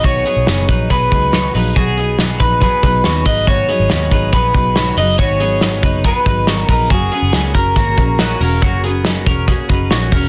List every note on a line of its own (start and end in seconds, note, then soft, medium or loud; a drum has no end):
0.04 0.22 B1 medium
0.04 0.25 B2 medium
0.04 0.25 D#3 medium
0.04 0.25 F#3 medium
0.04 0.25 B3 medium
0.04 0.24 D#4 medium
0.04 0.25 F#4 medium
0.04 0.23 G#4 medium
0.04 0.90 C#5 medium
0.04 kick medium
0.04 closed hi-hat medium
0.25 0.46 F#3 soft
0.25 0.46 B3 soft
0.25 0.47 D#4 soft
0.25 0.46 G#4 soft
0.25 closed hi-hat medium
0.36 0.45 B1 medium
0.46 0.65 F#1 medium
0.46 0.68 B2 medium
0.46 0.68 D#3 medium
0.46 0.69 F#3 medium
0.46 0.68 B3 medium
0.46 0.67 D#4 medium
0.46 0.66 G#4 medium
0.46 snare medium
0.46 closed hi-hat medium
0.68 0.87 A#1 medium
0.68 0.88 F#3 soft
0.68 0.89 B3 soft
0.68 0.90 D#4 medium
0.68 0.89 G#4 medium
0.68 0.90 B4 medium
0.68 kick medium
0.68 closed hi-hat medium
0.89 1.08 B1 medium
0.89 1.11 F#3 medium
0.89 1.11 B3 medium
0.89 1.11 D#4 medium
0.89 1.10 G#4 medium
0.89 1.51 B4 medium
0.89 kick medium
0.89 closed hi-hat medium
1.11 1.48 C#2 medium
1.11 1.32 F#3 soft
1.11 1.32 B3 soft
1.11 1.33 D#4 medium
1.11 1.33 G#4 medium
1.11 kick medium
1.11 closed hi-hat medium
1.32 1.54 B2 medium
1.32 1.54 D#3 medium
1.32 1.54 F#3 medium
1.32 1.54 B3 medium
1.32 1.53 D#4 medium
1.32 1.55 F#4 soft
1.32 1.52 G#4 medium
1.32 1.54 C#5 medium
1.32 snare loud
1.32 closed hi-hat medium
1.53 1.73 A#1 medium
1.53 1.75 F#3 soft
1.53 1.76 B3 soft
1.53 1.76 D#4 soft
1.53 1.75 G#4 medium
1.53 1.76 B4 medium
1.53 open hi-hat medium
1.76 2.37 B1 medium
1.76 1.97 B2 medium
1.76 1.98 D#3 medium
1.76 1.97 F#3 medium
1.76 1.98 B3 medium
1.76 1.98 D#4 medium
1.76 1.98 F#4 medium
1.76 2.16 G#4 medium
1.76 1.96 G#4 medium
1.76 kick medium
1.76 closed hi-hat medium
1.97 2.18 F#3 soft
1.97 2.19 B3 soft
1.97 2.19 D#4 soft
1.97 2.19 G#4 soft
1.97 closed hi-hat medium
2.19 2.40 B2 medium
2.19 2.40 D#3 medium
2.19 2.41 F#3 medium
2.19 2.40 B3 medium
2.19 2.39 D#4 medium
2.19 2.38 G#4 medium
2.19 snare medium
2.19 closed hi-hat medium
2.39 2.67 A#1 medium
2.39 2.59 F#3 soft
2.39 2.61 B3 soft
2.39 2.62 D#4 soft
2.39 2.61 G#4 soft
2.39 2.60 B4 medium
2.39 2.62 B4 medium
2.39 kick medium
2.39 closed hi-hat medium
2.61 2.83 F#3 soft
2.61 2.83 B3 medium
2.61 2.83 D#4 medium
2.61 2.82 G#4 medium
2.61 3.26 B4 medium
2.61 kick medium
2.61 closed hi-hat medium
2.83 3.01 B1 medium
2.83 3.04 F#3 soft
2.83 3.05 B3 soft
2.83 3.04 D#4 soft
2.83 3.04 G#4 medium
2.83 3.04 B4 medium
2.83 kick medium
2.83 closed hi-hat medium
3.04 3.23 D#2 medium
3.04 3.26 B2 medium
3.04 3.26 D#3 medium
3.04 3.26 F#3 medium
3.04 3.26 B3 medium
3.04 3.25 D#4 medium
3.04 3.26 F#4 medium
3.04 3.24 G#4 medium
3.04 3.26 C#5 medium
3.04 snare loud
3.04 closed hi-hat medium
3.26 3.62 G#1 medium
3.26 3.46 F#3 soft
3.26 3.46 B3 soft
3.26 3.47 D#4 soft
3.26 3.47 G#4 medium
3.26 3.47 B4 medium
3.26 3.46 D#5 medium
3.26 kick medium
3.26 open hi-hat medium
3.46 3.68 G#2 medium
3.46 3.69 D#3 medium
3.46 3.69 F#3 medium
3.46 3.69 B3 medium
3.46 3.69 D#4 medium
3.46 3.69 F#4 medium
3.46 3.67 G#4 medium
3.46 4.33 C#5 medium
3.46 kick medium
3.46 closed hi-hat medium
3.68 3.91 F#3 soft
3.68 3.91 B3 soft
3.68 3.91 D#4 soft
3.68 3.90 G#4 soft
3.68 closed hi-hat medium
3.79 3.89 G#1 medium
3.90 4.09 D#2 medium
3.90 4.12 G#2 medium
3.90 4.12 D#3 medium
3.90 4.13 F#3 medium
3.90 4.12 B3 medium
3.90 4.11 D#4 medium
3.90 4.10 G#4 medium
3.90 snare medium
3.90 closed hi-hat medium
4.11 4.30 G#1 medium
4.11 4.31 F#3 soft
4.11 4.32 B3 soft
4.11 4.33 D#4 soft
4.11 4.33 G#4 medium
4.11 4.33 B4 medium
4.11 kick medium
4.11 closed hi-hat medium
4.32 4.51 A#1 medium
4.32 4.54 F#3 medium
4.32 4.55 B3 medium
4.32 4.54 D#4 medium
4.32 4.53 G#4 medium
4.32 4.97 B4 medium
4.32 kick medium
4.32 closed hi-hat medium
4.54 4.91 B1 medium
4.54 4.76 F#3 soft
4.54 4.76 B3 soft
4.54 4.76 D#4 soft
4.54 4.76 G#4 medium
4.54 kick medium
4.54 closed hi-hat medium
4.75 4.97 G#2 medium
4.75 4.98 D#3 medium
4.75 4.98 F#3 medium
4.75 4.98 B3 medium
4.75 4.98 D#4 medium
4.75 4.98 F#4 medium
4.75 4.96 G#4 medium
4.75 4.97 C#5 medium
4.75 snare medium
4.75 closed hi-hat medium
4.97 5.15 F#1 medium
4.97 5.18 F#3 soft
4.97 5.19 B3 soft
4.97 5.19 D#4 soft
4.97 5.19 G#4 soft
4.97 5.19 B4 medium
4.97 5.18 D#5 medium
4.97 open hi-hat medium
5.18 5.80 G#1 medium
5.18 5.41 G#2 medium
5.18 5.41 D#3 medium
5.18 5.41 F#3 medium
5.18 5.40 B3 medium
5.18 5.40 D#4 medium
5.18 5.40 F#4 medium
5.18 5.39 G#4 medium
5.18 6.05 C#5 medium
5.18 kick medium
5.18 closed hi-hat medium
5.40 5.62 F#3 soft
5.40 5.62 B3 soft
5.40 5.62 D#4 soft
5.40 5.62 G#4 soft
5.40 closed hi-hat medium
5.61 5.83 G#2 medium
5.61 5.83 D#3 medium
5.61 5.84 F#3 medium
5.61 5.84 B3 medium
5.61 5.83 D#4 medium
5.61 5.82 G#4 medium
5.61 snare medium
5.61 closed hi-hat medium
5.83 6.11 F#1 medium
5.83 6.02 F#3 soft
5.83 6.04 B3 medium
5.83 6.05 D#4 medium
5.83 6.05 G#4 medium
5.83 6.04 B4 medium
5.83 kick medium
5.83 closed hi-hat medium
6.04 6.26 F#3 medium
6.04 6.26 B3 medium
6.04 6.26 D#4 medium
6.04 6.24 G#4 medium
6.04 6.52 B4 medium
6.04 kick medium
6.04 closed hi-hat medium
6.26 6.63 G#1 medium
6.26 6.47 F#3 soft
6.26 6.48 B3 soft
6.26 6.48 D#4 medium
6.26 6.47 G#4 soft
6.26 6.47 B4 medium
6.26 kick medium
6.26 closed hi-hat medium
6.47 6.69 G#2 medium
6.47 6.69 D#3 medium
6.47 6.70 F#3 medium
6.47 6.70 B3 medium
6.47 6.69 D#4 medium
6.47 6.70 F#4 soft
6.47 6.68 G#4 medium
6.47 6.69 C#5 medium
6.47 snare medium
6.47 closed hi-hat medium
6.52 6.70 A#4 medium
6.69 6.87 A#1 medium
6.69 6.90 F#3 soft
6.69 6.91 B3 soft
6.69 6.91 D#4 soft
6.69 6.91 G#4 soft
6.69 6.91 A#4 medium
6.69 6.91 B4 medium
6.69 kick medium
6.69 open hi-hat medium
6.90 7.09 F#1 medium
6.90 7.12 F#3 medium
6.90 7.13 A#3 medium
6.90 7.13 C#4 medium
6.90 7.12 F#4 medium
6.90 7.54 G#4 medium
6.90 7.11 G#4 medium
6.90 kick medium
6.90 closed hi-hat medium
7.12 7.53 B3 medium
7.12 7.33 C#4 soft
7.12 7.34 F#4 soft
7.12 7.33 G#4 medium
7.12 closed hi-hat medium
7.22 7.32 F#1 medium
7.33 7.51 C#2 medium
7.33 7.55 F#3 medium
7.33 7.55 A#3 medium
7.33 7.55 C#4 medium
7.33 7.55 F#4 medium
7.33 7.54 G#4 medium
7.33 snare medium
7.33 closed hi-hat medium
7.55 7.73 F#1 medium
7.55 7.76 C#4 soft
7.55 7.77 F#4 soft
7.55 7.77 G#4 medium
7.55 9.87 A#4 medium
7.55 7.76 A#4 medium
7.55 kick medium
7.55 closed hi-hat medium
7.76 7.94 G#1 medium
7.76 7.98 A#3 medium
7.76 7.98 C#4 medium
7.76 7.98 F#4 medium
7.76 7.96 G#4 medium
7.76 kick medium
7.76 closed hi-hat loud
7.97 8.34 A#1 medium
7.97 8.19 C#4 soft
7.97 8.19 F#4 medium
7.97 8.19 G#4 medium
7.97 kick medium
7.97 closed hi-hat medium
8.19 8.40 F#3 medium
8.19 8.41 A#3 medium
8.19 8.41 C#4 medium
8.19 8.40 F#4 medium
8.19 8.38 G#4 medium
8.19 8.40 B4 medium
8.19 snare medium
8.19 closed hi-hat medium
8.40 8.59 E1 medium
8.40 8.62 C#4 soft
8.40 8.62 F#4 medium
8.40 8.62 G#4 medium
8.40 8.62 A#4 medium
8.40 open hi-hat medium
8.62 9.23 F#1 medium
8.62 8.84 F#3 medium
8.62 8.84 A#3 medium
8.62 8.84 C#4 medium
8.62 8.85 F#4 medium
8.62 8.82 G#4 medium
8.62 kick medium
8.62 closed hi-hat medium
8.84 9.25 B3 medium
8.84 9.05 C#4 soft
8.84 9.06 F#4 medium
8.84 9.05 G#4 medium
8.84 closed hi-hat medium
9.05 9.27 F#3 medium
9.05 9.27 A#3 medium
9.05 9.27 C#4 medium
9.05 9.27 F#4 medium
9.05 9.25 G#4 medium
9.05 snare medium
9.05 closed hi-hat medium
9.26 9.54 E1 medium
9.26 9.48 C#4 soft
9.26 9.49 F#4 medium
9.26 9.48 G#4 medium
9.26 9.47 A#4 medium
9.26 kick medium
9.26 closed hi-hat medium
9.48 9.69 A#3 medium
9.48 9.70 C#4 medium
9.48 9.69 F#4 medium
9.48 9.67 G#4 medium
9.48 kick medium
9.48 closed hi-hat medium
9.69 9.88 F#1 medium
9.69 9.90 C#4 medium
9.69 9.91 D#4 soft
9.69 9.90 F#4 medium
9.69 9.91 G#4 medium
9.69 9.90 B4 medium
9.69 kick medium
9.69 closed hi-hat medium
9.90 10.09 A#1 medium
9.90 10.12 F#3 medium
9.90 10.12 A#3 medium
9.90 10.13 C#4 medium
9.90 10.12 F#4 medium
9.90 10.11 G#4 medium
9.90 10.12 C#5 medium
9.90 snare loud
9.90 closed hi-hat medium
10.12 10.29 E1 medium
10.12 10.29 C#4 soft
10.12 10.29 F#4 medium
10.12 10.29 G#4 medium
10.12 10.29 A#4 medium
10.12 kick medium
10.12 open hi-hat medium